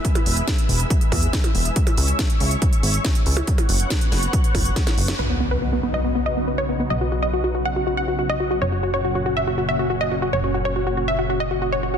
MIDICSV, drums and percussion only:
0, 0, Header, 1, 3, 480
1, 0, Start_track
1, 0, Key_signature, 5, "major"
1, 0, Tempo, 428571
1, 53, Time_signature, 4, 2, 24, 8
1, 13416, End_track
2, 0, Start_track
2, 0, Title_t, "Percussion blips"
2, 172, Note_on_c, 9, 63, 64
2, 284, Note_off_c, 9, 63, 0
2, 1255, Note_on_c, 9, 63, 69
2, 1367, Note_off_c, 9, 63, 0
2, 1613, Note_on_c, 9, 63, 64
2, 1725, Note_off_c, 9, 63, 0
2, 2092, Note_on_c, 9, 63, 60
2, 2204, Note_off_c, 9, 63, 0
2, 3770, Note_on_c, 9, 63, 79
2, 3882, Note_off_c, 9, 63, 0
2, 4012, Note_on_c, 9, 63, 60
2, 4124, Note_off_c, 9, 63, 0
2, 5093, Note_on_c, 9, 63, 66
2, 5205, Note_off_c, 9, 63, 0
2, 5453, Note_on_c, 9, 63, 58
2, 5565, Note_off_c, 9, 63, 0
2, 13416, End_track
3, 0, Start_track
3, 0, Title_t, "Drums"
3, 52, Note_on_c, 9, 36, 107
3, 53, Note_on_c, 9, 42, 78
3, 164, Note_off_c, 9, 36, 0
3, 165, Note_off_c, 9, 42, 0
3, 172, Note_on_c, 9, 42, 51
3, 284, Note_off_c, 9, 42, 0
3, 292, Note_on_c, 9, 46, 104
3, 404, Note_off_c, 9, 46, 0
3, 412, Note_on_c, 9, 42, 51
3, 524, Note_off_c, 9, 42, 0
3, 532, Note_on_c, 9, 38, 114
3, 532, Note_on_c, 9, 42, 78
3, 533, Note_on_c, 9, 36, 113
3, 644, Note_off_c, 9, 38, 0
3, 644, Note_off_c, 9, 42, 0
3, 645, Note_off_c, 9, 36, 0
3, 654, Note_on_c, 9, 42, 50
3, 766, Note_off_c, 9, 42, 0
3, 774, Note_on_c, 9, 46, 93
3, 886, Note_off_c, 9, 46, 0
3, 893, Note_on_c, 9, 42, 54
3, 1005, Note_off_c, 9, 42, 0
3, 1012, Note_on_c, 9, 36, 120
3, 1013, Note_on_c, 9, 42, 79
3, 1124, Note_off_c, 9, 36, 0
3, 1125, Note_off_c, 9, 42, 0
3, 1133, Note_on_c, 9, 42, 50
3, 1245, Note_off_c, 9, 42, 0
3, 1253, Note_on_c, 9, 36, 59
3, 1255, Note_on_c, 9, 46, 111
3, 1365, Note_off_c, 9, 36, 0
3, 1367, Note_off_c, 9, 46, 0
3, 1374, Note_on_c, 9, 42, 52
3, 1486, Note_off_c, 9, 42, 0
3, 1492, Note_on_c, 9, 38, 112
3, 1492, Note_on_c, 9, 42, 78
3, 1493, Note_on_c, 9, 36, 121
3, 1604, Note_off_c, 9, 38, 0
3, 1604, Note_off_c, 9, 42, 0
3, 1605, Note_off_c, 9, 36, 0
3, 1613, Note_on_c, 9, 42, 61
3, 1725, Note_off_c, 9, 42, 0
3, 1732, Note_on_c, 9, 46, 90
3, 1844, Note_off_c, 9, 46, 0
3, 1852, Note_on_c, 9, 42, 53
3, 1964, Note_off_c, 9, 42, 0
3, 1971, Note_on_c, 9, 42, 82
3, 1973, Note_on_c, 9, 36, 106
3, 2083, Note_off_c, 9, 42, 0
3, 2085, Note_off_c, 9, 36, 0
3, 2092, Note_on_c, 9, 42, 54
3, 2204, Note_off_c, 9, 42, 0
3, 2211, Note_on_c, 9, 46, 106
3, 2323, Note_off_c, 9, 46, 0
3, 2331, Note_on_c, 9, 42, 52
3, 2443, Note_off_c, 9, 42, 0
3, 2452, Note_on_c, 9, 36, 115
3, 2452, Note_on_c, 9, 38, 116
3, 2452, Note_on_c, 9, 42, 82
3, 2564, Note_off_c, 9, 36, 0
3, 2564, Note_off_c, 9, 38, 0
3, 2564, Note_off_c, 9, 42, 0
3, 2573, Note_on_c, 9, 42, 53
3, 2685, Note_off_c, 9, 42, 0
3, 2692, Note_on_c, 9, 46, 94
3, 2804, Note_off_c, 9, 46, 0
3, 2813, Note_on_c, 9, 42, 53
3, 2925, Note_off_c, 9, 42, 0
3, 2932, Note_on_c, 9, 36, 115
3, 2933, Note_on_c, 9, 42, 79
3, 3044, Note_off_c, 9, 36, 0
3, 3045, Note_off_c, 9, 42, 0
3, 3053, Note_on_c, 9, 42, 51
3, 3165, Note_off_c, 9, 42, 0
3, 3173, Note_on_c, 9, 46, 108
3, 3285, Note_off_c, 9, 46, 0
3, 3292, Note_on_c, 9, 42, 52
3, 3404, Note_off_c, 9, 42, 0
3, 3411, Note_on_c, 9, 38, 119
3, 3411, Note_on_c, 9, 42, 85
3, 3412, Note_on_c, 9, 36, 118
3, 3523, Note_off_c, 9, 38, 0
3, 3523, Note_off_c, 9, 42, 0
3, 3524, Note_off_c, 9, 36, 0
3, 3530, Note_on_c, 9, 42, 63
3, 3642, Note_off_c, 9, 42, 0
3, 3650, Note_on_c, 9, 46, 82
3, 3762, Note_off_c, 9, 46, 0
3, 3770, Note_on_c, 9, 42, 55
3, 3882, Note_off_c, 9, 42, 0
3, 3891, Note_on_c, 9, 42, 86
3, 3892, Note_on_c, 9, 36, 110
3, 4003, Note_off_c, 9, 42, 0
3, 4004, Note_off_c, 9, 36, 0
3, 4012, Note_on_c, 9, 42, 54
3, 4124, Note_off_c, 9, 42, 0
3, 4131, Note_on_c, 9, 46, 107
3, 4243, Note_off_c, 9, 46, 0
3, 4252, Note_on_c, 9, 42, 55
3, 4364, Note_off_c, 9, 42, 0
3, 4372, Note_on_c, 9, 36, 115
3, 4373, Note_on_c, 9, 38, 117
3, 4373, Note_on_c, 9, 42, 84
3, 4484, Note_off_c, 9, 36, 0
3, 4485, Note_off_c, 9, 38, 0
3, 4485, Note_off_c, 9, 42, 0
3, 4494, Note_on_c, 9, 42, 58
3, 4606, Note_off_c, 9, 42, 0
3, 4614, Note_on_c, 9, 38, 41
3, 4614, Note_on_c, 9, 46, 93
3, 4726, Note_off_c, 9, 38, 0
3, 4726, Note_off_c, 9, 46, 0
3, 4733, Note_on_c, 9, 42, 56
3, 4845, Note_off_c, 9, 42, 0
3, 4852, Note_on_c, 9, 36, 124
3, 4853, Note_on_c, 9, 42, 81
3, 4964, Note_off_c, 9, 36, 0
3, 4965, Note_off_c, 9, 42, 0
3, 4973, Note_on_c, 9, 42, 53
3, 5085, Note_off_c, 9, 42, 0
3, 5093, Note_on_c, 9, 36, 58
3, 5093, Note_on_c, 9, 46, 106
3, 5205, Note_off_c, 9, 36, 0
3, 5205, Note_off_c, 9, 46, 0
3, 5213, Note_on_c, 9, 42, 55
3, 5325, Note_off_c, 9, 42, 0
3, 5333, Note_on_c, 9, 36, 120
3, 5334, Note_on_c, 9, 38, 62
3, 5334, Note_on_c, 9, 42, 85
3, 5445, Note_off_c, 9, 36, 0
3, 5446, Note_off_c, 9, 38, 0
3, 5446, Note_off_c, 9, 42, 0
3, 5453, Note_on_c, 9, 38, 62
3, 5453, Note_on_c, 9, 42, 64
3, 5565, Note_off_c, 9, 38, 0
3, 5565, Note_off_c, 9, 42, 0
3, 5573, Note_on_c, 9, 46, 88
3, 5685, Note_off_c, 9, 46, 0
3, 5693, Note_on_c, 9, 38, 81
3, 5693, Note_on_c, 9, 42, 55
3, 5805, Note_off_c, 9, 38, 0
3, 5805, Note_off_c, 9, 42, 0
3, 13416, End_track
0, 0, End_of_file